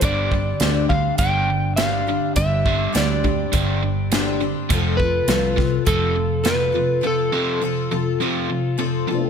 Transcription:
<<
  \new Staff \with { instrumentName = "Electric slide guitar" } { \time 4/4 \key g \mixolydian \tempo 4 = 103 d''4. f''8 g''4 f''4 | e''4 d''2~ d''8 r8 | r8 b'4. a'4 b'4 | a'2. r4 | }
  \new Staff \with { instrumentName = "Twelve-string acoustic guitar" } { \time 4/4 \key g \mixolydian <g, d g c' d' g'>8 <g c' d' g'>8 <g, d g c' d' g'>8 <g c' d' g'>8 <g c' d' g'>4 <g, d g c' d' g'>8 <g c' d' g'>8 | <g, d g c' d' g'>8 <g c' d' g'>8 <g, d g c' d' g'>8 <g c' d' g'>8 <g c' d' g'>4 <g, d g c' d' g'>8 <g c' d' g'>8 | <f c' f' a'>8 <c' f' a'>8 <f c' f' a'>8 <c' f' a'>8 <f c' f' a'>4 <f c' f' a'>8 <c' f' a'>8 | <f c' f' a'>8 <c' f' a'>8 <f c' f' a'>8 <c' f' a'>8 <f c' f' a'>4 <f c' f' a'>8 <c' f' a'>8 | }
  \new Staff \with { instrumentName = "Overdriven electric guitar" } { \clef bass \time 4/4 \key g \mixolydian <g, d g>8 <g, d>8 <g, d>8 <g, d>8 <g, d g>8 <g, d>8 <g, d>8 <g, d>8 | <g, d>8 <g, d g>8 <g, d>8 <g, d>8 <g, d g>8 <g, d>8 <g, d>8 <g, d>8 | <f, c f>8 <f, c>8 <f, c>8 <f, c>8 <f, c f>8 <f, c>8 <f, c>8 <f, c>8 | <f, c>8 <f, c f>8 <f, c>8 <f, c>8 <f, c f>8 <f, c>8 <f, c>8 <f, c>8 | }
  \new Staff \with { instrumentName = "Picked electric bass" } { \clef bass \time 4/4 \key g \mixolydian g,,4 d,4 g,,2 | g,,4 d,4 g,,2 | f,,4 c,4 f,,2 | r1 | }
  \new DrumStaff \with { instrumentName = "Drums" } \drummode { \time 4/4 <hh bd>8 bd8 <hh sn>8 bd8 <hh bd>4 <hh sn>4 | <hh bd>8 bd8 <hh sn>8 bd8 <hh bd>4 <hh sn>4 | <hh bd>8 bd8 <hh sn>8 <bd sn>8 <hh bd>4 <hh sn>4 | r4 r4 r4 r4 | }
>>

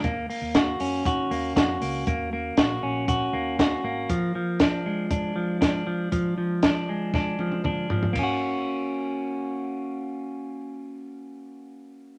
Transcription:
<<
  \new Staff \with { instrumentName = "Clean electric guitar" } { \time 4/4 \key ges \lydian \tempo 4 = 118 bes8 bes8 ges'8 des'8 ges'8 bes8 ges'8 bes8 | bes8 bes8 ges'8 des'8 ges'8 bes8 ges'8 bes8 | f8 f8 d'8 aes8 d'8 f8 d'8 f8 | f8 f8 d'8 aes8 d'8 f8 d'8 f8 |
<bes des' ges'>1~ | <bes des' ges'>1 | }
  \new Staff \with { instrumentName = "Fingered electric bass" } { \clef bass \time 4/4 \key ges \lydian ees,8 r16 ees,8. ges,8 ees8 ees,8 f,8 des,8 | ees,4 bes,,8 bes,,4 ees,4 aes,,8 | r1 | r1 |
r1 | r1 | }
  \new DrumStaff \with { instrumentName = "Drums" } \drummode { \time 4/4 <hh bd>8 hho8 <hh bd sn>8 hho8 <hh bd>8 hho8 <hh bd sn>8 hho8 | <hh bd>4 <hh bd sn>4 <hh bd>4 <hh bd sn>4 | <hh bd>4 <hh bd sn>4 <hh bd>4 <hh bd sn>4 | <hh bd>4 <hh bd sn>4 <bd sn>8 tommh16 tommh16 <bd toml>8 tomfh16 tomfh16 |
<bd cymr>4 r4 r4 r4 | r4 r4 r4 r4 | }
>>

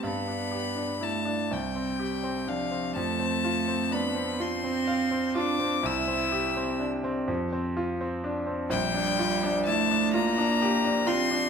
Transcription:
<<
  \new Staff \with { instrumentName = "Violin" } { \time 6/8 \key f \lydian \tempo 4. = 42 b''4 a''8 g''4 f''8 | a''4 b''8 c'''4 d'''8 | e'''4 r2 | \key g \dorian g''4 a''8 bes''4 c'''8 | }
  \new Staff \with { instrumentName = "Grand piano" } { \time 6/8 \key f \lydian g,16 d'16 g'16 d'16 e'16 d'16 c,16 c'16 g'16 c'16 d'16 c'16 | f,16 c'16 f'16 c'16 d'16 c'16 f'16 c'16 f''16 c'16 f'16 c'16 | c,16 c'16 g'16 c'16 d'16 c'16 f,16 c'16 f'16 c'16 d'16 c'16 | \key g \dorian bes,,16 d'16 f'16 d'16 e'16 d'16 f'16 d'16 g'16 d'16 f'16 d'16 | }
  \new Staff \with { instrumentName = "Cello" } { \time 6/8 \key f \lydian b4 a8 g4 f8 | a4 b8 c'4 d'8 | e'4 r2 | \key g \dorian g4 a8 bes4 c'8 | }
>>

